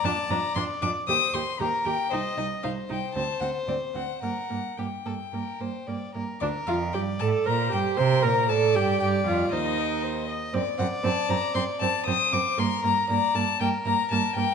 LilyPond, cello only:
\new Staff \with { instrumentName = "Cello" } { \clef bass \time 4/4 \key g \minor \tempo 4 = 116 f,8 f,8 f,8 f,8 ees,8 ees,8 ees,8 ees,8 | c,8 c,8 c,8 c,8 d,8 d,8 d,8 d,8 | g,8 g,8 g,8 g,8 g,8 g,8 g,8 g,8 | d,8 f,8 g,8 a,8 bes,8 g,8 c8 bes,8 |
a,8 g,8 g,8 f,8 ees,4. r8 | fis,8 fis,8 fis,8 fis,8 fis,8 fis,8 fis,8 fis,8 | g,8 g,8 g,8 g,8 g,8 g,8 g,8 g,8 | }